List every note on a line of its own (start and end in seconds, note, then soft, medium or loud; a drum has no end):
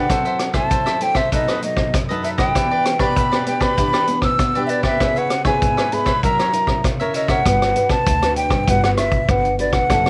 0.00 0.55 F#5 medium
0.09 0.68 F#3 medium
0.09 0.51 C4 soft
0.09 0.51 E4 soft
0.09 0.24 F#4 soft
0.09 0.24 A4 soft
0.09 0.51 A4 medium
0.09 0.25 C5 soft
0.09 0.24 E5 soft
0.09 kick medium
0.09 cross-stick medium
0.09 closed hi-hat medium
0.25 0.39 A4 soft
0.25 0.39 C5 soft
0.25 0.39 E5 medium
0.25 closed hi-hat soft
0.39 muted cavaquinho stroke soft
0.39 cross-stick soft
0.39 closed hi-hat soft
0.53 0.96 C4 soft
0.53 0.97 E4 medium
0.53 0.70 A4 soft
0.53 0.97 A4 soft
0.53 0.69 C5 soft
0.53 0.69 E5 medium
0.53 1.04 A5 medium
0.53 kick medium
0.53 cross-stick medium
0.53 closed hi-hat soft
0.70 1.30 F#3 soft
0.70 0.85 F#4 soft
0.70 0.85 A4 soft
0.70 0.85 C5 soft
0.70 0.85 E5 soft
0.70 kick medium
0.70 closed hi-hat medium
0.86 1.15 A4 soft
0.86 1.14 C5 soft
0.86 1.13 E5 medium
0.86 cross-stick soft
0.86 closed hi-hat soft
1.01 1.20 C4 soft
1.01 1.20 E4 soft
1.01 1.20 A4 medium
1.01 1.18 G5 medium
1.01 closed hi-hat soft
1.15 1.31 A4 soft
1.15 1.31 C5 medium
1.15 1.30 E5 medium
1.15 1.32 E5 medium
1.15 kick soft
1.15 cross-stick soft
1.15 closed hi-hat soft
1.32 1.91 B2 medium
1.32 1.59 F#3 soft
1.32 1.59 A3 soft
1.32 1.46 D#4 soft
1.32 1.59 D#4 medium
1.32 1.47 A4 soft
1.32 1.47 B4 soft
1.32 1.47 D#5 soft
1.32 1.62 D#5 medium
1.32 kick medium
1.32 closed hi-hat medium
1.48 1.61 A4 soft
1.48 1.61 B4 soft
1.48 1.61 D#5 soft
1.48 cross-stick medium
1.48 closed hi-hat soft
1.62 1.92 F#3 soft
1.62 1.92 A3 soft
1.62 1.92 D#4 soft
1.62 1.95 D#5 medium
1.62 muted cavaquinho stroke soft
1.62 closed hi-hat soft
1.77 kick soft
1.77 cross-stick soft
1.94 2.52 F#2 medium
1.94 kick medium
1.94 cross-stick medium
1.94 closed hi-hat medium
2.09 2.51 F#3 soft
2.09 2.51 A3 soft
2.09 2.51 D#4 medium
2.09 2.22 A4 soft
2.09 2.23 B4 medium
2.09 2.23 D#5 medium
2.09 closed hi-hat soft
2.23 2.38 D#4 soft
2.23 2.38 A4 soft
2.23 2.37 B4 soft
2.23 2.36 D#5 soft
2.23 2.30 E5 medium
2.23 closed hi-hat soft
2.38 2.54 A4 soft
2.38 2.53 B4 medium
2.38 2.53 D#5 medium
2.38 3.01 G5 medium
2.38 kick medium
2.38 cross-stick medium
2.38 closed hi-hat soft
2.55 3.13 E3 medium
2.55 2.96 B3 soft
2.55 2.96 D4 medium
2.55 2.69 E4 soft
2.55 2.70 G4 soft
2.55 2.97 G4 soft
2.55 2.70 B4 soft
2.55 2.70 D5 soft
2.55 kick medium
2.55 cross-stick medium
2.55 closed hi-hat medium
2.71 2.84 G4 soft
2.71 2.84 B4 soft
2.71 2.85 D5 medium
2.85 muted cavaquinho stroke soft
2.85 cross-stick medium
2.85 closed hi-hat soft
2.99 3.42 B3 soft
2.99 3.41 D4 soft
2.99 3.42 G4 medium
2.99 3.16 G4 soft
2.99 3.15 B4 medium
2.99 3.15 D5 medium
2.99 3.47 B5 medium
2.99 kick medium
2.99 cross-stick soft
2.99 closed hi-hat soft
3.16 3.75 B2 medium
3.16 3.31 E4 soft
3.16 3.31 G4 soft
3.16 3.31 B4 soft
3.16 3.30 D5 soft
3.16 kick medium
3.16 closed hi-hat medium
3.31 3.61 G4 soft
3.31 3.60 B4 soft
3.31 3.59 D5 medium
3.31 cross-stick medium
3.31 closed hi-hat soft
3.46 3.73 B3 medium
3.46 3.73 D4 soft
3.46 3.73 G4 soft
3.46 3.63 G5 medium
3.46 closed hi-hat soft
3.60 3.76 G4 soft
3.60 3.76 B4 medium
3.60 3.75 D5 medium
3.60 4.22 B5 medium
3.60 kick soft
3.60 cross-stick medium
3.60 closed hi-hat soft
3.77 4.36 E3 medium
3.77 4.04 B3 soft
3.77 4.04 D4 soft
3.77 3.92 E4 soft
3.77 3.92 G4 soft
3.77 4.04 G4 medium
3.77 3.92 B4 soft
3.77 3.92 D5 soft
3.77 kick medium
3.77 closed hi-hat medium
3.93 4.06 G4 soft
3.93 4.06 B4 medium
3.93 4.06 D5 medium
3.93 cross-stick medium
3.93 closed hi-hat soft
4.07 4.49 B3 soft
4.07 4.50 D4 soft
4.07 4.50 G4 medium
4.07 muted cavaquinho stroke soft
4.07 closed hi-hat soft
4.22 4.63 E6 medium
4.22 kick medium
4.22 cross-stick soft
4.39 4.98 B2 medium
4.39 kick medium
4.39 cross-stick soft
4.39 closed hi-hat soft
4.55 4.96 B3 medium
4.55 4.97 D4 medium
4.55 4.68 G4 soft
4.55 4.97 G4 medium
4.55 4.69 B4 soft
4.55 4.69 D5 medium
4.55 closed hi-hat soft
4.66 4.83 E4 soft
4.66 4.84 G4 soft
4.66 4.83 B4 soft
4.66 4.84 D5 medium
4.66 4.71 E5 soft
4.66 closed hi-hat soft
4.70 4.82 D5 soft
4.83 4.99 G4 soft
4.83 4.99 B4 medium
4.83 4.98 D5 medium
4.83 5.19 E5 medium
4.83 kick medium
4.83 cross-stick medium
5.00 5.59 C#3 medium
5.00 5.29 B3 soft
5.00 5.14 E4 soft
5.00 5.30 E4 soft
5.00 5.30 G#4 medium
5.00 5.15 B4 soft
5.00 5.15 C#5 soft
5.00 5.15 E5 soft
5.00 kick medium
5.00 cross-stick medium
5.00 closed hi-hat medium
5.16 5.29 B4 soft
5.16 5.30 C#5 medium
5.16 5.30 E5 medium
5.16 5.45 F#5 medium
5.16 closed hi-hat soft
5.30 muted cavaquinho stroke soft
5.30 cross-stick medium
5.30 closed hi-hat soft
5.44 5.87 B3 medium
5.44 5.87 E4 soft
5.44 5.88 G#4 medium
5.44 5.61 B4 soft
5.44 5.60 C#5 medium
5.44 5.59 E5 medium
5.44 5.95 G#5 medium
5.44 kick medium
5.44 cross-stick medium
5.44 closed hi-hat soft
5.61 6.20 G#2 medium
5.61 5.76 E4 soft
5.61 5.76 B4 soft
5.61 5.76 C#5 soft
5.61 5.76 E5 soft
5.61 kick medium
5.61 closed hi-hat soft
5.77 6.06 B4 soft
5.77 6.06 C#5 medium
5.77 6.04 E5 medium
5.77 cross-stick medium
5.77 closed hi-hat soft
5.92 6.10 B3 medium
5.92 6.10 E4 soft
5.92 6.11 G#4 medium
5.92 6.23 B5 medium
5.92 closed hi-hat soft
6.05 6.22 B4 soft
6.05 6.21 C#5 medium
6.05 6.21 E5 medium
6.05 kick medium
6.05 cross-stick soft
6.05 closed hi-hat soft
6.23 6.81 F#3 medium
6.23 6.49 C#4 soft
6.23 6.49 E4 soft
6.23 6.37 F#4 soft
6.23 6.37 A#4 soft
6.23 6.49 A#4 medium
6.23 6.38 C#5 soft
6.23 6.38 E5 soft
6.23 6.84 A#5 medium
6.23 kick medium
6.23 closed hi-hat medium
6.39 6.52 A#4 soft
6.39 6.52 C#5 medium
6.39 6.52 E5 medium
6.39 cross-stick medium
6.39 closed hi-hat soft
6.52 6.94 C#4 soft
6.52 6.94 E4 medium
6.52 6.94 A#4 soft
6.52 muted cavaquinho stroke soft
6.52 closed hi-hat soft
6.67 kick medium
6.67 cross-stick soft
6.84 7.43 C#3 medium
6.84 kick medium
6.84 cross-stick medium
6.84 closed hi-hat medium
7.00 7.41 C#4 medium
7.00 7.41 E4 medium
7.00 7.41 A#4 medium
7.00 7.14 A#4 medium
7.00 7.14 C#5 medium
7.00 7.14 E5 medium
7.00 closed hi-hat soft
7.14 7.28 F#4 soft
7.14 7.29 A#4 soft
7.14 7.28 C#5 soft
7.14 7.31 D#5 medium
7.14 7.27 E5 soft
7.14 closed hi-hat soft
7.28 7.44 A#4 soft
7.28 7.44 C#5 medium
7.28 7.43 E5 medium
7.28 7.92 F#5 medium
7.28 kick medium
7.28 cross-stick soft
7.28 closed hi-hat soft
7.46 7.71 G1 medium
7.46 8.04 G3 medium
7.46 7.71 D4 soft
7.46 7.71 F#4 medium
7.46 7.72 B4 medium
7.46 kick medium
7.46 cross-stick medium
7.46 closed hi-hat medium
7.62 cross-stick medium
7.62 closed hi-hat soft
7.76 8.04 D4 medium
7.76 8.05 F#4 medium
7.76 8.05 B4 medium
7.76 closed hi-hat soft
7.90 8.36 A5 medium
7.90 kick medium
7.90 cross-stick medium
7.90 closed hi-hat soft
8.07 8.45 D2 medium
8.07 8.65 D3 medium
8.07 kick medium
8.07 closed hi-hat medium
8.22 8.63 D4 medium
8.22 8.63 F#4 soft
8.22 8.64 B4 medium
8.22 cross-stick medium
8.22 closed hi-hat soft
8.36 8.64 G5 medium
8.36 closed hi-hat soft
8.49 8.63 G2 medium
8.49 kick medium
8.49 cross-stick medium
8.49 closed hi-hat soft
8.64 9.19 G1 medium
8.64 8.71 G5 medium
8.64 kick medium
8.64 closed hi-hat medium
8.69 9.26 G3 medium
8.69 9.24 D4 medium
8.69 9.24 F#4 medium
8.69 9.25 B4 medium
8.69 8.84 F#5 medium
8.84 8.91 F#5 medium
8.84 cross-stick medium
8.84 closed hi-hat soft
8.97 9.32 E5 medium
8.97 cross-stick medium
8.97 closed hi-hat soft
9.12 kick medium
9.12 closed hi-hat soft
9.29 9.80 G1 medium
9.29 9.87 D3 soft
9.29 9.47 D4 soft
9.29 9.47 F#4 medium
9.29 9.47 B4 medium
9.29 9.59 F#5 medium
9.29 kick medium
9.29 cross-stick medium
9.29 closed hi-hat medium
9.45 closed hi-hat soft
9.59 9.77 D4 soft
9.59 9.77 F#4 medium
9.59 9.77 B4 medium
9.59 9.75 D5 medium
9.59 closed hi-hat soft
9.73 10.10 F#5 medium
9.73 kick medium
9.73 cross-stick medium
9.73 closed hi-hat soft
9.90 10.10 F#1 medium
9.90 10.10 F#3 medium
9.90 10.08 C4 medium
9.90 10.08 E4 medium
9.90 10.08 A4 medium
9.90 kick medium
9.90 cross-stick medium
9.90 closed hi-hat medium
10.06 cross-stick medium
10.06 closed hi-hat soft